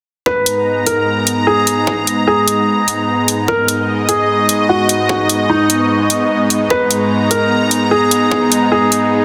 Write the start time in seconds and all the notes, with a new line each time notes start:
0.26 G#2 G#3 B3 D#4 B4 A#5, kick
0.32 G#4
0.46 closed hi-hat
0.80 D#5 A#5
0.86 A#4, closed hi-hat
1.27 closed hi-hat
1.47 G#4
1.67 closed hi-hat
1.87 kick
2.07 closed hi-hat
2.27 G#4
2.48 closed hi-hat
2.88 closed hi-hat
3.28 closed hi-hat
3.48 A#4 D#5, kick
3.68 closed hi-hat
4.02 C#6
4.09 G#4, closed hi-hat
4.49 closed hi-hat
4.69 F#4
4.89 closed hi-hat
5.09 kick
5.29 closed hi-hat
5.50 D#4
5.70 closed hi-hat
6.10 closed hi-hat
6.50 closed hi-hat
6.70 B4 A#5, kick
6.91 closed hi-hat
7.24 A#5
7.31 A#4, closed hi-hat
7.71 closed hi-hat
7.91 G#4
8.11 closed hi-hat
8.31 kick
8.52 closed hi-hat
8.72 G#4
8.92 closed hi-hat